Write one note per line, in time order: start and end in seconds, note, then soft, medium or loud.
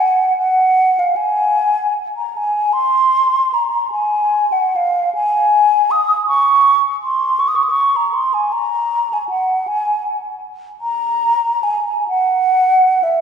0.00 0.37 F#5 medium
0.37 1.00 F#5 medium
0.99 1.18 F5 medium
1.16 1.93 G#5 medium
2.17 2.38 A#5 medium
2.37 2.74 G#5 medium
2.73 3.55 C6 loud
3.54 3.91 A#5 medium
3.92 4.54 G#5 medium
4.52 4.77 F#5 medium
4.76 5.13 F5 medium
5.14 5.92 G#5 loud
5.91 6.27 D#6 medium
6.27 6.80 C#6 medium
7.03 7.41 C6 medium
7.39 7.50 C#6 medium
7.48 7.57 D#6 medium
7.55 7.64 C#6 medium
7.63 7.71 D#6 medium
7.70 7.98 C#6 medium
7.96 8.15 A#5 medium
8.14 8.35 C6 medium
8.34 8.54 G#5 medium
8.52 9.15 A#5 medium
9.13 9.28 G#5 medium
9.29 9.69 F#5 medium
9.67 10.04 G#5 medium
10.81 11.65 A#5 loud
11.63 12.08 G#5 medium
12.08 13.05 F#5 medium
13.03 13.21 E5 medium